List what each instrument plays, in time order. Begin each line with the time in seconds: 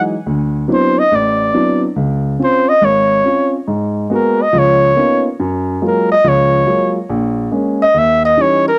Already playing: grand piano E3 F#3 G#3 D#4
0.26 grand piano D2
0.68 grand piano F#3 B3 C4 D4 E4
0.73 flugelhorn C5
0.99 flugelhorn D#5
1.12 grand piano A1, flugelhorn D5
1.54 grand piano F#3 B3 C4 D4 E4
1.96 grand piano C#2
2.39 grand piano C4 C#4 F4
2.43 flugelhorn C5
2.69 flugelhorn D#5
2.82 grand piano G#1, flugelhorn C#5
3.24 grand piano C4 C#4 F4
3.68 grand piano G#2
4.10 grand piano G#3 A#3 B3 F#4
4.15 flugelhorn A#4
4.42 flugelhorn D#5
4.53 grand piano C#2 F3
4.59 flugelhorn C#5
4.96 grand piano A#3 B3 C#4 D#4 F4
5.40 grand piano F#2
5.82 grand piano F#3 G#3 A#3 F4
5.87 flugelhorn A#4
6.12 flugelhorn D#5
6.24 grand piano C#2 F3
6.28 flugelhorn C#5
6.66 grand piano F#3 G#3 A#3 F4
7.10 grand piano A#1
7.52 grand piano G#3 A#3 C#4
7.82 flugelhorn D#5
7.94 grand piano D#2
7.98 flugelhorn E5
8.25 flugelhorn D#5
8.37 grand piano E3 G3 C#4 D#4
8.42 flugelhorn C#5
8.68 flugelhorn A#4